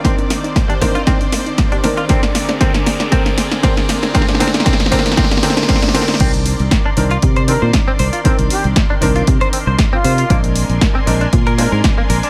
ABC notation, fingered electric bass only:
X:1
M:4/4
L:1/16
Q:"Swing 16ths" 1/4=117
K:Cm
V:1 name="Fingered electric bass" clef=bass
z16 | z16 | z16 | C,,3 C,, z2 C,, z C,3 B,, z2 C,, z |
z C,, z C,, z2 C,, z C, z2 C,, z2 C, z | B,,,3 B,,, z2 B,,, z B,,3 A,, z2 B,,, z |]